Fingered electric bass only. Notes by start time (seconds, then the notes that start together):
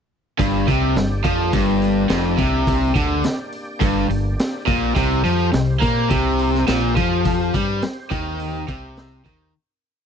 0.40 G1
0.68 C2
0.96 G1
1.25 F2
1.53 G1
2.10 F1
2.39 C2
2.96 D2
3.82 G1
4.10 G1
4.68 A#1
4.97 C2
5.25 F2
5.54 C2
5.82 A#2
6.11 C2
6.69 A#1
6.97 F2
7.55 G2
8.12 D#2
8.68 C2
9.26 D#2